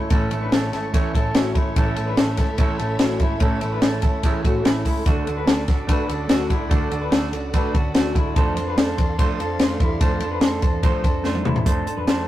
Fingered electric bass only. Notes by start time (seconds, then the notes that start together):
0.11 A1
0.31 A1
0.52 A1
0.73 G#1
1.15 A1
1.35 A1
1.56 G#1
1.76 A1
1.97 A1
2.18 A1
2.38 G#1
2.80 A1
3.00 A1
3.21 G#1
3.41 A1
3.62 A1
3.83 A1
4.03 G#1
4.45 A1
4.65 A1
4.85 C#2
5.06 D2
5.27 D2
5.47 D2
5.68 C#2
6.09 D2
6.29 D2
6.50 C#2
6.71 D2
6.91 D2
7.12 D2
7.32 C#2
7.75 D2
7.95 D2
8.16 D2
8.36 F2
8.57 F2
8.78 F2
8.98 E2
9.40 F2
9.61 F2
9.81 E2
10.01 F2
10.22 F2
10.42 F2
10.63 E2
11.04 F2
11.25 F2
11.46 E2
11.66 F2
11.97 F2
12.07 F2